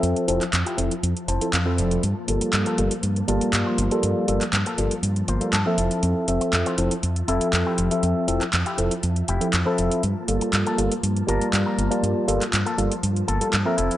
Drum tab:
HH |xxxxxxxxxxxxx-xx|x-xxxxxxxxxxx-xx|x-xxxxxxxxxxx-xx|x-xxxxxxxxxxx-xx|
CP |---xx-------x---|----x-------x---|---xx-------x---|----x-------x---|

HH |x-xxxxxxxxxxx-xx|x-xxxxxxxxxxx-xx|x-xxxxxxxxxxx-xx|
CP |---xx-------x---|----x-------x---|---xx-------x---|